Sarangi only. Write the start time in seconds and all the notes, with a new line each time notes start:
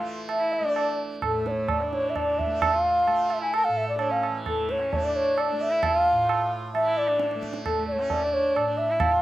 Already playing: F4
0.39 E4
0.64 D4
1.34 A3
1.81 D4
2.29 D4
2.73 F4
3.41 E4
3.57 A#4
3.64 A4
3.98 D4
4.10 C#4
4.56 A3
4.80 C#4
5.02 D4
5.48 D4
5.70 E4
5.95 F4
6.86 E4
7.08 D4
7.78 A3
7.99 C#4
8.24 D4
8.67 D4
8.91 E4
9.13 F4